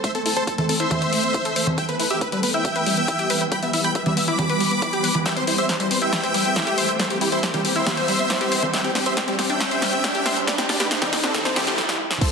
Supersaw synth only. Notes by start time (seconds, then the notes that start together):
0.04 C5 E5
0.15 A4
0.26 A4
0.36 A4 C5
0.47 A4
0.58 A4
0.69 A4
0.80 C5 E5
1.78 E5 G5
1.89 B4
2.00 B4
2.11 G4 E5
2.21 B4
2.32 B4
2.43 B4
2.54 E5 G5
3.52 G5 B5
3.62 E5
3.74 E5
3.84 G5 B5
3.95 E5
4.06 E5
4.17 E5
4.28 B5 D6
5.26 E5 G5
5.37 C5
5.47 C5
5.58 C5 E5
5.69 C5
5.80 C5
5.91 C5
6.02 E5 G5
7.00 C5 E5
7.11 G4
7.21 G4
7.32 E4 C5
7.43 G4
7.54 G4
7.65 G4
7.76 C5 E5
8.73 E5 G5
8.84 G4
8.95 G4
9.06 C5 E5
9.17 G4
9.28 G4
9.39 G4
9.50 E5 G5
10.48 B4 D5
10.58 G4
10.69 G4
10.80 G4 B4
10.91 G4
11.02 G4
11.13 G4
11.23 C4 A4
12.21 A4 C5